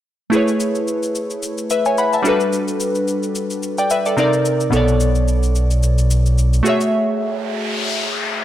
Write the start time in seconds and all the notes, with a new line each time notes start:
0.30 A3 E4 G#4, shaker
0.35 B4 C#5
0.48 shaker
0.60 shaker
0.75 shaker
0.88 shaker
1.03 shaker
1.15 shaker
1.30 shaker
1.43 shaker
1.58 shaker
1.70 B4 E5, shaker
1.85 C#5 G#5, shaker
1.98 F#5 B5, shaker
2.13 E5 A5, shaker
2.22 G3 D4 F#4, shaker
2.27 A4 B4
2.40 shaker
2.53 shaker
2.68 shaker
2.80 shaker
2.95 shaker
3.08 shaker
3.23 shaker
3.35 shaker
3.50 shaker
3.63 shaker
3.78 D5 G5, shaker
3.90 B4 E5, shaker
4.06 A4 D5, shaker
4.17 C3 C4 D#4 A#4 D5, shaker
4.33 shaker
4.45 shaker
4.60 shaker
4.70 B1 B2 B3 A4, shaker
4.75 C#5 D5
4.88 shaker
5.00 shaker
5.15 shaker
5.28 shaker
5.43 shaker
5.55 shaker
5.71 shaker
5.83 shaker
5.98 shaker
6.11 shaker
6.26 shaker
6.38 shaker
6.53 shaker
6.63 A3 F#4 G#4, shaker
6.68 C#5 E5
6.81 shaker
6.93 noise sweep